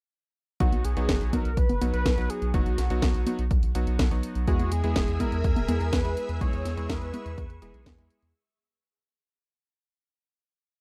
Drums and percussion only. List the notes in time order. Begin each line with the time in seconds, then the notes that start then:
0.60 kick, closed hi-hat
0.72 closed hi-hat, high conga
0.85 closed hi-hat
0.97 closed hi-hat
1.09 kick, snare, closed hi-hat
1.21 closed hi-hat
1.33 kick, closed hi-hat, high conga
1.45 closed hi-hat
1.57 kick, closed hi-hat
1.69 closed hi-hat, high conga
1.81 closed hi-hat, high conga
1.94 closed hi-hat
2.06 kick, snare, closed hi-hat
2.18 closed hi-hat
2.30 closed hi-hat
2.42 closed hi-hat
2.54 kick, closed hi-hat
2.66 closed hi-hat
2.78 snare, closed hi-hat
2.90 closed hi-hat
3.02 kick, snare, closed hi-hat
3.14 closed hi-hat
3.27 closed hi-hat, high conga
3.39 closed hi-hat
3.51 kick, closed hi-hat
3.63 closed hi-hat
3.75 closed hi-hat
3.87 closed hi-hat
3.99 kick, snare, closed hi-hat
4.11 closed hi-hat
4.23 closed hi-hat
4.35 closed hi-hat
4.47 kick, closed hi-hat
4.60 closed hi-hat, high conga
4.72 closed hi-hat
4.84 closed hi-hat
4.96 kick, snare, closed hi-hat
5.08 closed hi-hat
5.20 kick, closed hi-hat, high conga
5.32 closed hi-hat
5.44 kick, closed hi-hat
5.56 closed hi-hat, high conga
5.68 closed hi-hat, high conga
5.81 closed hi-hat
5.93 kick, snare, closed hi-hat
6.05 closed hi-hat
6.17 closed hi-hat
6.29 closed hi-hat
6.41 kick, closed hi-hat
6.53 closed hi-hat
6.65 snare, closed hi-hat
6.78 closed hi-hat
6.89 kick, snare, closed hi-hat
7.02 closed hi-hat
7.14 closed hi-hat, high conga
7.26 closed hi-hat
7.38 kick, closed hi-hat
7.50 closed hi-hat
7.62 closed hi-hat
7.74 closed hi-hat
7.86 kick, snare, closed hi-hat
7.98 closed hi-hat
8.10 closed hi-hat
8.22 closed hi-hat